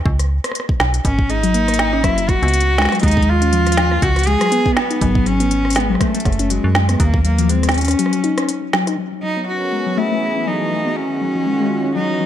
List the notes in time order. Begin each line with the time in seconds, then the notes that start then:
0.06 C#2, kick
0.19 cross-stick, closed hi-hat
0.44 cross-stick, closed hi-hat
0.52 cross-stick, closed hi-hat
0.60 cross-stick
0.69 kick
0.80 B1, snare
0.94 closed hi-hat
1.05 G#1 C#4, kick, closed hi-hat
1.19 kick
1.30 G#3 D#4, closed hi-hat
1.43 F#3, closed hi-hat
1.54 A#3, closed hi-hat
1.68 A#3, cross-stick, closed hi-hat
1.74 closed hi-hat
1.79 snare, closed hi-hat
1.93 C#4, cross-stick
2.04 F#1 F#3 E4, kick, cross-stick, closed hi-hat
2.18 F#3, closed hi-hat
2.29 F#3 F#4, kick, cross-stick, closed hi-hat
2.43 C#2 B3, closed hi-hat
2.48 closed hi-hat
2.54 closed hi-hat
2.60 closed hi-hat
2.78 G#3, snare
2.82 snare
2.85 snare
2.89 F#3, cross-stick, snare, closed hi-hat
2.95 closed hi-hat
2.99 D#2 G#3, kick, closed hi-hat
3.03 D#4, closed hi-hat
3.08 closed hi-hat
3.11 closed hi-hat
3.17 G#3, kick
3.22 closed hi-hat
3.28 F4
3.42 C#4, closed hi-hat
3.53 F3, closed hi-hat
3.67 F3, cross-stick, closed hi-hat
3.72 closed hi-hat
3.77 F3, snare, closed hi-hat
3.91 A#3, cross-stick
4.02 C#2 F#4, kick, closed hi-hat
4.16 cross-stick, closed hi-hat
4.19 closed hi-hat
4.23 closed hi-hat
4.27 G#3 G#4, closed hi-hat
4.41 F#3, cross-stick, closed hi-hat
4.52 B3, closed hi-hat
4.66 B3, kick
4.77 B3, snare
4.91 D#4, closed hi-hat
5.01 G#1 F#3, kick, closed hi-hat
5.15 F#3, kick
5.26 F#3 C#4, closed hi-hat
5.40 B3, closed hi-hat
5.51 closed hi-hat
5.65 cross-stick
5.70 closed hi-hat
5.73 closed hi-hat
5.75 G#3 B3, snare, closed hi-hat
5.77 closed hi-hat
5.90 F#3
5.95 cross-stick
6.01 A3, kick, cross-stick, closed hi-hat
6.15 A3, closed hi-hat
6.20 closed hi-hat
6.25 F#1, kick, cross-stick, closed hi-hat
6.32 closed hi-hat
6.39 C#4, closed hi-hat
6.50 F#3 G#3, closed hi-hat
6.64 F#2 F#3
6.75 F#3, snare
6.89 B3, cross-stick, closed hi-hat
7.00 D#2 A#3, kick, closed hi-hat
7.14 kick
7.25 F#3 A#3, closed hi-hat
7.38 F3, closed hi-hat
7.49 G#3 C4, closed hi-hat
7.63 G#3, cross-stick, closed hi-hat
7.69 snare, closed hi-hat
7.71 closed hi-hat
7.74 C#4, closed hi-hat
7.78 closed hi-hat
7.81 closed hi-hat
7.85 cross-stick, closed hi-hat
7.88 C#4, closed hi-hat
7.91 closed hi-hat
7.99 F#3, closed hi-hat
8.06 cross-stick
8.13 F#3, closed hi-hat
8.24 D#4, closed hi-hat
8.38 C#4, cross-stick, closed hi-hat
8.49 closed hi-hat
8.73 F#3, snare
8.87 D#4, cross-stick, closed hi-hat
8.98 F#3
9.12 F#3
9.23 F#3 D#4
9.34 B3 C#4
9.43 G#4 A#4
9.48 F#4
9.73 G#3
9.86 F#3
9.97 E3 A3 E4
10.11 A3
10.24 A3
10.36 C#4
10.43 F#4
10.47 F#3 D#4
10.61 F#3
10.72 F#3
10.86 B3
10.96 D#3 C#4
11.21 F#3
11.35 F3 G#3
11.42 C#4 F4
11.46 G#3
11.60 G#3
11.85 C#4
11.96 E3 F#3 D#4
12.06 B3
12.20 F#3